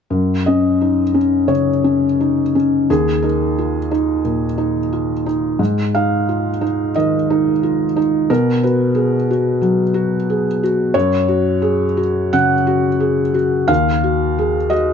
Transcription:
felt piano
0.10 F#2
0.46 C#4 D#5
0.81 D#4
1.14 C#4
1.48 C#3 C#5
1.84 C#4
2.20 D#4
2.55 C#4
2.90 D#2 G#4
3.23 D#4 A#4
3.58 F4
3.91 D#4
4.24 A#2
4.58 D#4
4.93 F4
5.26 D#4
5.59 G#2
5.95 D#4 F5
6.29 F4
6.61 D#4
6.96 D#3 D#5
7.30 D#4
7.63 F4
7.96 D#4
8.30 B2 A#4
8.63 F#4 B4
8.95 G#4
9.31 F#4
9.62 F#3
9.94 F#4
10.30 G#4
10.63 F#4
10.94 F#2 C#5
11.28 F#4
11.62 G#4
11.97 F#4
12.33 C#3 F#5
12.67 F#4
13.00 G#4
13.34 F#4
13.68 D#2 F5
14.04 F#4
14.39 G#4
14.70 F#4 D#5

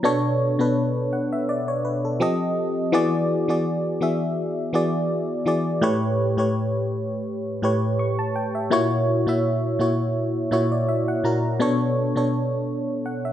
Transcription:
fm electric piano
0.03 B2 B3 D4 A4 C#5
0.59 B2 B3 D4 A4 B4
1.13 F#5
1.32 E5
1.49 D5
1.68 C#5
1.85 B4
2.05 A4
2.20 F3 C4 G4 A4 D#5
2.92 E3 B3 F#4 G#4 D5
3.48 E3 B3 F#4 G#4 D5
4.01 E3 B3 F#4 G#4 E5
4.73 E3 B3 F#4 G#4 D5
5.46 E3 B3 F#4 G#4 D5
5.81 A2 A3 G4 B4 C#5
6.37 A2 A3 G4 B4 C#5
7.62 A2 A3 G4 B4 C#5
7.99 C#6
8.19 A5
8.36 G5
8.55 E5
8.70 A#2 A#3 E4 F#4 C#5
9.26 A#2 A#3 E4 F#4 E5
9.79 A#2 A#3 E4 F#4 C#5
10.51 A#2 A#3 E4 F#4 C#5 E5
10.72 D5
10.88 E5
11.08 F#5
11.23 A#2 A#3 E4 F#4 A#4 A#5
11.60 B2 B3 D4 A4 C#5
12.15 B2 B3 D4 A4 C#5
13.06 F#5
13.25 E5

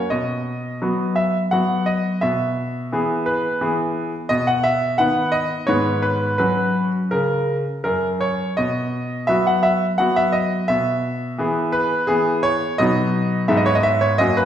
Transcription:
grand piano
Already playing: C#5
0.10 B2 D#5
0.82 F#3 B3 F#4
1.16 E5
1.51 F#3 B3 F#4 F#5
1.86 D#5
2.21 B2 E5
2.92 E3 B3 G#4
3.26 B4
3.61 E3 B3 G#4
4.29 B2 D#5
4.47 F#5
4.63 E5
4.98 D#3 B3 B4 F#5
5.32 D#5
5.67 G#2 D#3 B3 B4 C#5
6.02 B4
6.38 F#3 C#4 F#4 B4
7.11 C#3 A#4
7.84 F#2 A#4
8.21 C#5
8.57 B2 D#5
9.27 F#3 B3 F#4 E5
9.47 F#5
9.63 E5
9.98 F#3 B3 F#4 F#5
10.16 E5
10.32 D#5
10.68 B2 E5
11.38 E3 B3 G#4
11.72 B4
12.07 E3 B3 G#4
12.43 C#5
12.78 B2 F#3 B3 D#4 D#5
13.48 G#2 G#3 B3 D#4 E5
13.57 D#5
13.66 C#5
13.75 D#5
13.83 E5
14.01 C#5
14.18 F#2 A#3 C#4 F#4 D#5
14.37 B4

